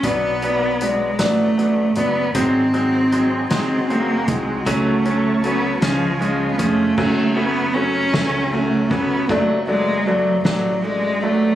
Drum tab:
CC |------|------|------|x-----|
RD |------|------|------|-xxxxx|
HH |xxxxxx|xxxxxx|xxxxxx|------|
SD |---o--|---o--|---o--|---o--|
BD |o-----|o----o|o----o|o----o|

CC |------|
RD |xxxxxx|
HH |------|
SD |---o--|
BD |o-----|